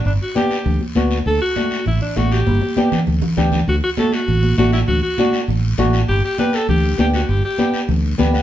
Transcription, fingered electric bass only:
X:1
M:4/4
L:1/8
Q:1/4=199
K:D
V:1 name="Fingered electric bass" clef=bass
G,,, z3 D,, z D,,2 | D,, z3 A,,, z A,,,2 | G,,, z3 D,, z D,,2 | D,, z3 A,,,2 A,,,2 |
D,, z3 A,,,2 A,,,2 | G,,, z3 D,,2 D,,2 | G,,, z3 D,,2 D,,2 |]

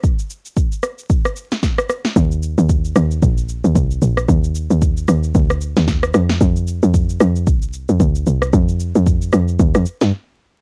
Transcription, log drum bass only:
X:1
M:4/4
L:1/16
Q:"Swing 16ths" 1/4=113
K:Fmix
V:1 name="Log drum bass" clef=bass
z16 | E,,3 E,,3 E,,2 B,,,3 E,, C,,2 B,,,2 | E,,3 E,,3 E,,2 D,,3 E,,3 F,,2 | F,,3 F,,3 F,,2 C,,3 F,, D,,2 C,,2 |
F,,3 F,,3 F,,2 E,, F,, z G,, z4 |]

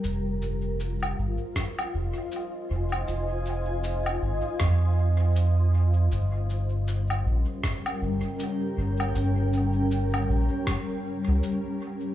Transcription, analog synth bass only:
X:1
M:4/4
L:1/16
Q:"Swing 16ths" 1/4=79
K:Fm
V:1 name="Analog synth bass" clef=bass
F,,,6 A,,, z3 F,,, z3 F,,,2 | F,,,6 A,,, z F,,8 | G,,,6 B,,, z3 G,,, z3 G,,,2 | G,,,6 B,,, z4 D,, z4 |]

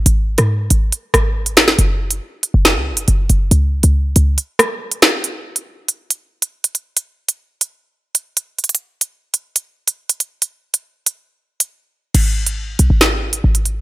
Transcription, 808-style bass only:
X:1
M:4/4
L:1/16
Q:1/4=139
K:F#mix
V:1 name="808-style bass" clef=bass
G,,,3 G,,3 G,,,2 z2 G,,,6 | F,,,4 z3 F,,,2 C,,3/2 F,,,3/2 F,,,2 F,,,2 | C,,3 C,,3 C,,2 z8 | z16 |
z16 | z16 | z16 | G,,,6 B,,, G,,,4- G,,, G,,,4 |]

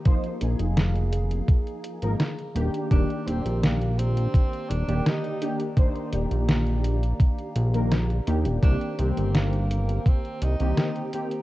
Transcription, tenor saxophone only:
X:1
M:4/4
L:1/16
Q:1/4=84
K:Eb
V:1 name="Tenor saxophone"
z16 | D2 C2 B,2 C4 D2 E3 z | z16 | D2 C2 B,4 C2 E4 z2 |]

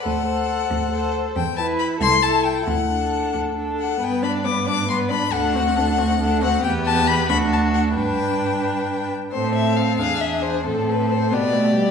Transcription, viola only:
X:1
M:6/8
L:1/8
Q:3/8=91
K:G
V:1 name="Viola"
A A3 A2 | z E2 E E2 | z D3 D2 | B, D B, D B, D |
D C D C D C | B,3 D3 | D4- D z | [K:Am] C3 D3 |
C3 B, A, G, |]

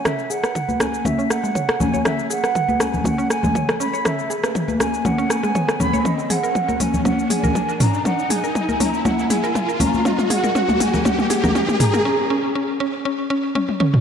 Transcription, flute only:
X:1
M:4/4
L:1/8
Q:"Swing 16ths" 1/4=120
K:F#mix
V:1 name="Flute"
e f2 g e f2 g | e f2 g f g2 b | e z2 g f g2 b | d f2 g f g2 a |
f g2 a f g2 a | d f2 g f z2 a | z8 |]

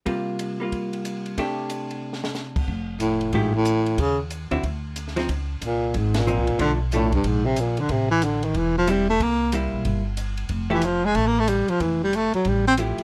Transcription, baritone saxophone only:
X:1
M:4/4
L:1/8
Q:"Swing" 1/4=184
K:F
V:1 name="Baritone saxophone" clef=bass
z8 | z8 | z2 A,,2 _A,, =A,,3 | _D, z6 z |
z2 B,,2 _A,, B,,3 | D, z A,, G,, _A,, C, B,, D, | C, E, D, _E, =E, F, G, A, | B,2 z6 |
z E, F, _A, (3=A, B, A, G, F, | E, G, A, _G, =G, C z2 |]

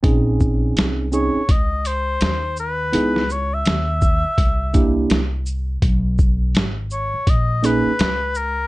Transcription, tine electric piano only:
X:1
M:4/4
L:1/8
Q:"Swing 16ths" 1/4=83
K:Cblyd
V:1 name="Tine electric piano"
[=CDEA]3 [CDEA] z4 | [CE_FA] z4 [B,=D=E=G] z2 | z4 z [^A,^C^D^G] z2 |]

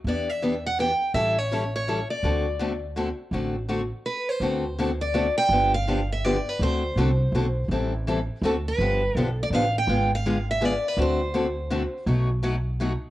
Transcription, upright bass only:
X:1
M:3/4
L:1/8
Q:"Swing" 1/4=165
K:Dmix
V:1 name="Upright bass" clef=bass
E,,6 | A,,,6 | D,,6 | A,,,4 z2 |
D,,6 | G,,,6 | D,,2 C,,2 B,,,2 | A,,,4 D,,2 |
G,,,2 B,,,2 A,,,2 | ^G,,,6 | D,,6 | B,,,6 |]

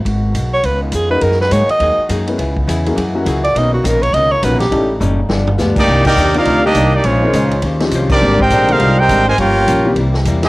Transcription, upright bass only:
X:1
M:4/4
L:1/8
Q:"Swing" 1/4=206
K:F#mix
V:1 name="Upright bass" clef=bass
G,,,2 B,,,2 C,,2 ^E,,2 | F,,2 G,, z D,, z F,,2 | C,,2 E,,2 F,,2 C,,2 | B,,,2 A,,,2 C,,2 A,,,2 |
=A,,,2 F,,,2 =G,,,2 =D,,2 | [K:Cm] C,,2 E,,2 D,,2 C,,2 | B,,,2 _D,,2 E,,2 C,,2 | A,,,2 B,,,2 C,,2 A,,,2 |
G,,,2 B,,,2 C,,2 =E,,2 |]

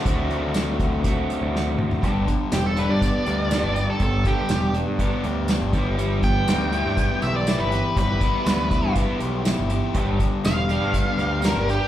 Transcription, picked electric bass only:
X:1
M:4/4
L:1/16
Q:1/4=121
K:G
V:1 name="Picked electric bass" clef=bass
D,,2 D,,8 z D,,3 D,, z | G,,,2 z2 E,,,3 G,,2 z D,,3 G,,,2 z | G,,,2 z2 E,,,3 G,,2 z D,,3 G,,, G,,,2- | G,,,4 D,,3 G,,2 z B,,,3 G,,,2 z |
G,,,2 z2 D,,3 G,,2 z B,,,3 G,,,2 z | G,,,2 z2 E,,,3 G,,2 z D,,3 G,,,2 z |]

